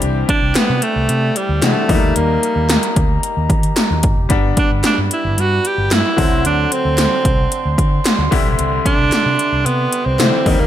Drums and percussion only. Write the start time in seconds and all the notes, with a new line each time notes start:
0.02 closed hi-hat
0.29 kick, closed hi-hat
0.55 snare, clap, closed hi-hat, tambourine
0.82 closed hi-hat
1.09 closed hi-hat
1.36 closed hi-hat
1.62 snare, clap, closed hi-hat, tambourine
1.89 kick, open hi-hat
2.16 closed hi-hat
2.43 closed hi-hat
2.69 snare, clap, closed hi-hat, tambourine
2.83 closed hi-hat
2.96 kick, closed hi-hat
3.23 closed hi-hat
3.50 kick, closed hi-hat
3.63 closed hi-hat
3.76 snare, clap, closed hi-hat, tambourine
4.03 kick, closed hi-hat
4.30 kick, closed hi-hat
4.57 kick, closed hi-hat
4.84 snare, clap, closed hi-hat, tambourine
5.11 closed hi-hat
5.38 closed hi-hat
5.65 closed hi-hat
5.91 snare, clap, closed hi-hat, tambourine
6.18 kick, open hi-hat
6.45 closed hi-hat
6.72 closed hi-hat
6.98 snare, clap, closed hi-hat, tambourine
7.25 kick, closed hi-hat
7.52 closed hi-hat
7.78 kick, closed hi-hat
8.05 snare, clap, closed hi-hat, tambourine
8.32 kick, open hi-hat
8.59 closed hi-hat
8.86 kick, closed hi-hat
9.12 snare, clap, closed hi-hat, tambourine
9.39 closed hi-hat
9.66 closed hi-hat
9.93 closed hi-hat
10.19 snare, clap, closed hi-hat, tambourine
10.46 kick, open hi-hat